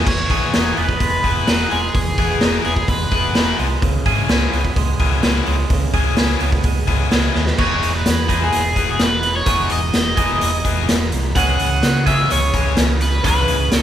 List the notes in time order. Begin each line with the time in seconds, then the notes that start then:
0.07 E1 E3 C#5, kick, crash
0.30 B1 B3 E4 G#4, kick, open hi-hat
0.53 E1 B3 D#4 E4 G#4, snare, open hi-hat
0.77 E1 B3 B4, open hi-hat
0.89 kick
1.00 E1 G#3, kick, open hi-hat
1.23 E1 B3 E4 G#4, kick, open hi-hat
1.47 E1 B3 D#4 E4 G#4, snare, open hi-hat
1.71 E1 G#3 G#4, open hi-hat
1.94 E1 E3, kick, open hi-hat
2.18 E1 B3 E4 G#4, kick, open hi-hat
2.41 E1 B3 D#4 E4 G#4, snare, open hi-hat
2.64 E1 B3 G#4, open hi-hat
2.76 kick
2.88 E1 G#3 B4, kick, open hi-hat
3.12 E1 B3 E4 G#4, kick, open hi-hat
3.35 E1 B3 D#4 E4 G#4, snare, open hi-hat
3.59 C2 G#3, open hi-hat
3.82 C#2 C#3, kick, open hi-hat
4.06 G#2 G#3 C#4 E4 G#4, kick, open hi-hat
4.29 C#2 G#3 C#4 E4 G#4, snare, open hi-hat
4.53 C#2 B3, open hi-hat
4.65 kick
4.76 C#2 G#3, kick, open hi-hat
4.99 C#2 G#3 B3 C#4 E4 G#4, kick, open hi-hat
5.23 C#2 G#3 C#4 E4 G#4, snare, open hi-hat
5.46 C#2 G#3, open hi-hat
5.70 C#2 C#3, kick, open hi-hat
5.93 C#2 G#3 C#4 E4 G#4, kick, open hi-hat
6.17 C#2 G#3 C#4 E4 G#4, snare, open hi-hat
6.40 C#2 B3, open hi-hat
6.52 kick
6.63 C#2 G#3, kick, open hi-hat
6.87 C#2 G#3 B3 C#4 E4 G#4, kick, open hi-hat
7.11 C#2 G#3 C#4 E4 G#4, snare, open hi-hat
7.35 D#2 G#3, snare
7.46 snare
7.58 E1 E3 G#3 B3 D#4 E4 G#4 C#5, kick, crash
7.83 E1, closed hi-hat
7.96 B4
8.06 E2, snare, closed hi-hat
8.28 E3 G#3 B3 D#4 E4 G#4, kick, closed hi-hat
8.44 G#4
8.53 E1, closed hi-hat
8.76 E1 B3 E4 G#4, kick, closed hi-hat
8.91 G#4
8.99 E1 B4, snare, closed hi-hat
9.23 closed hi-hat
9.36 C#5
9.46 E1 E3 G#3 B3 D#4 E4 G#4, kick, closed hi-hat
9.70 E1 D#5, closed hi-hat
9.94 E1, snare, closed hi-hat
10.17 E1 E3 G#3 B3 D#4 E4 G#4, kick, closed hi-hat
10.41 E1, closed hi-hat
10.65 E1 B3 E4 G#4, kick, closed hi-hat
10.89 E1, snare, closed hi-hat
11.12 C2, closed hi-hat
11.35 C#2 C#3 E3 G#3 B3 C#4 G#4 F#5, kick, closed hi-hat
11.59 C#2, closed hi-hat
11.83 C#3, snare, closed hi-hat
12.06 C#3 E3 G#3 B3 C#4 G#4 E5, kick, closed hi-hat
12.30 C#2 C#5, closed hi-hat
12.54 C#2 E3 G#3 C#4 G#4, kick, closed hi-hat
12.77 C#2, snare, closed hi-hat
13.01 B4, closed hi-hat
13.23 C#2 C#3 E3 G#3 B3 C#4 G#4 B4, kick, closed hi-hat
13.48 C#2, closed hi-hat
13.72 C#2, snare, closed hi-hat
13.79 A4